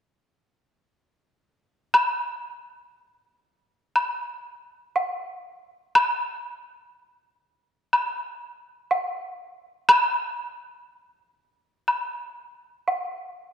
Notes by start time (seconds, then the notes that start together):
1.94 high woodblock
3.96 high woodblock
4.96 low woodblock
5.95 high woodblock
7.93 high woodblock
8.91 low woodblock
9.89 high woodblock
11.88 high woodblock
12.88 low woodblock